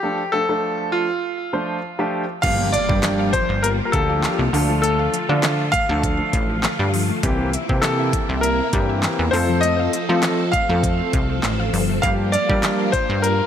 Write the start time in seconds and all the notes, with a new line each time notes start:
Already playing: G4
0.03 F3 A3 D4 A4
0.32 F3 A3 D4 A4
0.49 F3 A3 D4 A4
0.92 F4
1.53 F3 A3 D4 C5
1.99 F3 A3 D4 G4
2.42 G1 F3 G3 A#3 D4 F4 G4 F5, kick, closed hi-hat, crash, impact
2.73 D5 F5, closed hi-hat
2.89 G2 F3 A#3 D4 G4, kick
3.03 snare, clap, closed hi-hat
3.19 F5
3.33 F3 C5, kick, closed hi-hat
3.49 G1
3.63 A#4 F5, closed hi-hat
3.85 A#4
3.92 D2 F3 A#3 D4 G4 A4, kick, closed hi-hat
4.09 F5
4.23 F3, snare, clap, closed hi-hat
4.39 C2 A#3
4.53 D2 D3 F3 A3 D4 A4 F5, open hi-hat
4.69 F3
4.82 A3 A4, closed hi-hat
4.99 F5
5.13 F3, closed hi-hat
5.29 D3 F3 A3 D4 F4
5.43 snare, clap, closed hi-hat
5.72 A3 F5, kick, closed hi-hat
5.89 D2 F3 A3 D4 A4 F5
6.03 F3, kick, closed hi-hat
6.19 A3
6.33 A1 F5, kick, closed hi-hat
6.50 F3
6.63 A3, snare, clap, closed hi-hat
6.79 G2 F5
6.94 F3, open hi-hat
7.09 A3
7.23 C2 C3 E3 A#3 C4 E4 G4, kick, closed hi-hat
7.53 E5, closed hi-hat
7.69 C3 E3 A#3 C4 G4, kick
7.82 A4, snare, clap, closed hi-hat
7.99 E5
8.13 E3, kick, closed hi-hat
8.29 C2
8.41 A#4 E5, closed hi-hat
8.73 G2 E3 A#3 C4 G4, kick, closed hi-hat
8.89 E5
9.03 E3, snare, clap, closed hi-hat
9.19 E2 A#3
9.31 F2 F3 A3 C4 A4 C5 F5, open hi-hat
9.49 F3
9.61 A3 D#5, closed hi-hat
9.79 F5
9.93 F3, closed hi-hat
10.09 F3 A3 C4 A4
10.23 snare, clap, closed hi-hat
10.52 A3 F5, kick, closed hi-hat
10.69 F2 F3 A3 C4 A4 F5
10.83 F3, kick, closed hi-hat
10.99 A3
11.13 C2 F5, kick, closed hi-hat
11.29 F3
11.43 A1 A3, snare, clap, closed hi-hat
11.60 F5
11.73 G1 F3, open hi-hat
11.90 A3
12.02 G2 F3 G3 A#3 D4 F4 G4 F5, kick, closed hi-hat
12.32 D5 F5, closed hi-hat
12.49 F3 G3 A#3 D4 A#4, kick
12.63 snare, clap, closed hi-hat
12.80 F5
12.92 F3 C5, kick, closed hi-hat
13.09 G2
13.22 A#4 F5, closed hi-hat